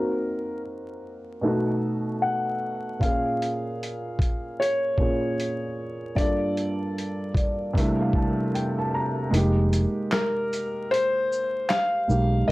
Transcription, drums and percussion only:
3.01 kick, closed hi-hat
3.42 closed hi-hat
3.83 closed hi-hat
4.19 kick, closed hi-hat
4.62 closed hi-hat
4.98 kick
5.40 closed hi-hat
6.16 kick, closed hi-hat
6.57 closed hi-hat
6.98 closed hi-hat
7.34 kick, closed hi-hat
7.75 kick, closed hi-hat
8.13 kick
8.55 closed hi-hat
9.34 closed hi-hat
9.73 closed hi-hat, shaker
10.12 snare, clap, closed hi-hat
10.53 closed hi-hat, shaker
10.94 closed hi-hat
11.32 shaker
11.70 snare, clap, closed hi-hat
12.10 shaker

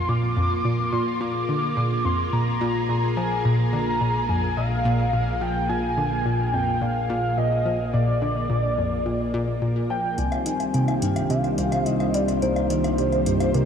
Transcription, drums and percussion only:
10.18 closed hi-hat
10.32 closed hi-hat, low woodblock
10.46 closed hi-hat
10.60 closed hi-hat, low woodblock
10.74 closed hi-hat
10.88 closed hi-hat, low woodblock
11.02 closed hi-hat
11.16 closed hi-hat, low woodblock
11.30 closed hi-hat
11.44 closed hi-hat, low woodblock
11.58 closed hi-hat
11.72 closed hi-hat, low woodblock
11.86 closed hi-hat
12.00 closed hi-hat, low woodblock
12.14 closed hi-hat
12.28 closed hi-hat, low woodblock
12.42 closed hi-hat
12.56 closed hi-hat, low woodblock
12.70 closed hi-hat
12.84 closed hi-hat, low woodblock
12.98 closed hi-hat
13.12 closed hi-hat, low woodblock
13.26 closed hi-hat
13.40 closed hi-hat, low woodblock
13.54 closed hi-hat

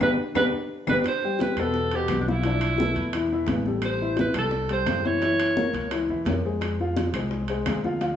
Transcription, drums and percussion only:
0.01 high conga, high timbale, claves
0.35 low bongo, high conga, high timbale, claves
0.87 low bongo, high conga, high timbale, claves
1.04 high bongo, high conga, high timbale, claves
1.24 high conga
1.39 high bongo, high conga, high timbale
1.57 high conga, high timbale, claves
1.74 high bongo, high conga
1.91 high conga, high timbale
2.08 high bongo, low bongo, high conga, high timbale, claves
2.28 high conga
2.43 high bongo, high conga, high timbale
2.60 high bongo, high conga, high timbale, claves
2.78 high bongo, high conga
2.95 high bongo, high timbale
3.13 high bongo, high conga, high timbale, claves
3.30 high bongo, high conga
3.47 high bongo, low bongo, high conga, high timbale, low timbale
3.66 high conga
3.82 high bongo, high conga, high timbale, claves
4.02 high conga
4.17 high bongo, high conga, high timbale
4.34 high conga, high timbale, claves
4.51 high bongo, high conga
4.69 high conga, high timbale
4.86 high bongo, low bongo, high conga, high timbale, low timbale, claves
5.06 high conga
5.22 high bongo, high conga, high timbale
5.40 high bongo, high conga, high timbale, claves
5.57 high bongo, high conga
5.74 high bongo, high timbale
5.91 high bongo, high conga, high timbale, claves
6.09 high bongo, high conga
6.26 high bongo, low bongo, high conga, high timbale, low timbale
6.61 high bongo, high conga, high timbale, claves
6.80 high conga
6.96 high bongo, high conga, high timbale
7.14 high conga, high timbale, claves
7.31 high bongo, high conga
7.48 high conga, high timbale
7.66 high bongo, low bongo, high conga, high timbale, low timbale, claves
7.84 high conga
8.01 high bongo, high conga, high timbale

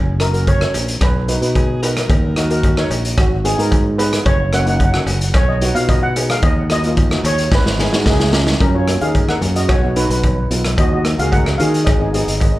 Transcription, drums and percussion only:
0.20 cross-stick, closed hi-hat
0.34 closed hi-hat
0.47 kick, closed hi-hat, cowbell
0.61 cross-stick
0.74 closed hi-hat, cowbell
0.88 closed hi-hat
1.01 kick, cross-stick, closed hi-hat, cowbell
1.28 closed hi-hat
1.42 closed hi-hat
1.55 kick, closed hi-hat, cowbell
1.83 closed hi-hat, cowbell
1.97 cross-stick, closed hi-hat
2.10 kick, closed hi-hat, cowbell
2.36 cross-stick, closed hi-hat
2.50 closed hi-hat
2.63 kick, closed hi-hat, cowbell
2.77 cross-stick
2.91 closed hi-hat, cowbell
3.05 closed hi-hat
3.18 kick, cross-stick, closed hi-hat, cowbell
3.45 closed hi-hat
3.59 closed hi-hat
3.72 kick, closed hi-hat, cowbell
3.99 closed hi-hat, cowbell
4.13 cross-stick, closed hi-hat
4.26 kick, closed hi-hat, cowbell
4.53 cross-stick, closed hi-hat
4.67 closed hi-hat
4.80 kick, closed hi-hat, cowbell
4.94 cross-stick
5.07 closed hi-hat, cowbell
5.21 closed hi-hat
5.34 kick, cross-stick, closed hi-hat, cowbell
5.61 closed hi-hat
5.76 closed hi-hat
5.89 kick, closed hi-hat, cowbell
6.16 closed hi-hat, cowbell
6.30 cross-stick, closed hi-hat
6.42 kick, closed hi-hat, cowbell
6.70 cross-stick, closed hi-hat
6.84 closed hi-hat
6.97 kick, closed hi-hat, cowbell
7.11 cross-stick
7.25 closed hi-hat, cowbell
7.38 closed hi-hat
7.52 kick, snare, cowbell
7.66 snare
7.79 snare
7.93 snare
8.06 kick, snare, cowbell
8.20 snare
8.33 snare, cowbell
8.47 snare
8.60 kick, closed hi-hat, cowbell
8.88 cross-stick, closed hi-hat
9.01 closed hi-hat
9.15 kick, closed hi-hat, cowbell
9.29 cross-stick
9.42 closed hi-hat
9.56 closed hi-hat
9.69 kick, cross-stick, closed hi-hat, cowbell
9.96 closed hi-hat
10.10 closed hi-hat
10.23 kick, closed hi-hat, cowbell
10.51 closed hi-hat
10.65 cross-stick, closed hi-hat
10.78 kick, closed hi-hat, cowbell
11.05 cross-stick, closed hi-hat
11.19 closed hi-hat
11.32 kick, closed hi-hat, cowbell
11.46 cross-stick
11.60 closed hi-hat
11.74 closed hi-hat
11.87 kick, cross-stick, closed hi-hat, cowbell
12.14 closed hi-hat
12.28 closed hi-hat
12.40 kick, closed hi-hat, cowbell

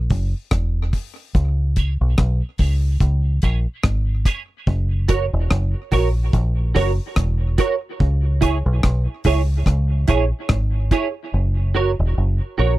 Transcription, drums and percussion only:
0.10 kick, open hi-hat
0.51 kick, cross-stick, hi-hat pedal
0.93 kick, open hi-hat
1.35 kick, hi-hat pedal
1.76 kick, closed hi-hat
2.18 kick, cross-stick
2.58 kick, open hi-hat
3.00 kick, hi-hat pedal
3.42 kick, closed hi-hat
3.83 kick, cross-stick
4.25 kick, cross-stick, closed hi-hat
4.67 kick
5.09 kick, closed hi-hat
5.51 kick, cross-stick
5.92 kick, open hi-hat
6.33 kick, hi-hat pedal
6.76 kick, open hi-hat
7.16 kick, cross-stick, hi-hat pedal
7.58 kick, closed hi-hat
8.00 kick
8.42 kick, closed hi-hat
8.83 kick, cross-stick
9.24 kick, open hi-hat
9.66 kick, cross-stick, hi-hat pedal
10.08 kick, closed hi-hat
10.49 kick, cross-stick
10.91 kick, closed hi-hat

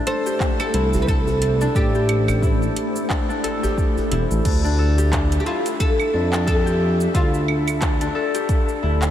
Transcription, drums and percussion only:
0.07 closed hi-hat
0.26 cabasa
0.40 kick, clap, cabasa
0.60 cabasa, claves
0.74 closed hi-hat
0.93 djembe bass, cabasa
1.08 kick, cabasa
1.27 djembe bass, cabasa
1.42 closed hi-hat
1.61 djembe slap, cabasa
1.75 kick, cabasa
1.95 djembe tone, cabasa
2.09 closed hi-hat, claves
2.28 djembe slap, djembe bass, cabasa, claves
2.42 kick, djembe tone, cabasa
2.62 djembe slap, cabasa
2.76 closed hi-hat, djembe slap
2.96 cabasa
3.10 kick, clap, cabasa
3.30 cabasa
3.44 closed hi-hat, djembe slap, djembe tone
3.64 djembe bass, cabasa
3.78 kick, cabasa
3.97 djembe bass, cabasa
4.12 closed hi-hat, djembe tone
4.31 cabasa
4.45 kick, closed hi-hat, crash, cabasa
4.65 cabasa
4.98 closed hi-hat, cabasa
5.13 kick, clap, closed hi-hat, cabasa
5.32 closed hi-hat, cabasa
5.66 closed hi-hat, cabasa
5.80 kick, closed hi-hat, cabasa
6.00 cabasa, claves
6.33 clap, cabasa
6.47 kick, closed hi-hat, cabasa
6.67 cabasa
7.01 cabasa
7.14 kick, closed hi-hat, cabasa
7.34 cabasa
7.48 claves
7.68 closed hi-hat, cabasa, claves
7.82 kick, clap, closed hi-hat, cabasa
8.01 closed hi-hat, cabasa
8.35 closed hi-hat, cabasa
8.49 kick, closed hi-hat, cabasa
8.69 cabasa
9.02 clap, cabasa

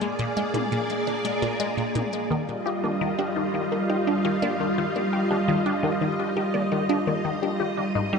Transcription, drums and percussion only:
0.01 closed hi-hat
0.19 closed hi-hat
0.37 closed hi-hat
0.54 closed hi-hat, high tom
0.72 closed hi-hat
0.90 closed hi-hat
1.07 closed hi-hat
1.25 closed hi-hat
1.43 closed hi-hat
1.60 closed hi-hat
1.78 closed hi-hat
1.95 closed hi-hat, high tom
2.13 closed hi-hat

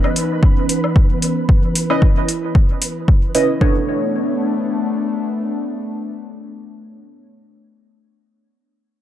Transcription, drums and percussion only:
0.04 low woodblock
0.16 open hi-hat
0.43 kick
0.69 open hi-hat
0.84 low woodblock
0.96 kick
1.22 open hi-hat
1.49 kick
1.75 open hi-hat
1.90 low woodblock
2.02 kick
2.29 open hi-hat
2.55 kick
2.82 open hi-hat
3.08 kick
3.35 open hi-hat
3.61 kick

